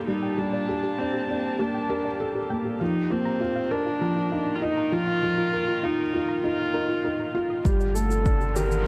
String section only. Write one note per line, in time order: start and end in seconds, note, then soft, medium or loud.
0.00 2.80 A#2 medium
0.00 7.65 A#3 medium
0.00 4.74 G4 medium
0.11 2.80 A5 medium
2.81 7.65 D#3 medium
3.69 7.66 A#4 medium
4.00 8.87 F4 medium
7.66 8.87 D3 medium
7.89 8.87 A#3 medium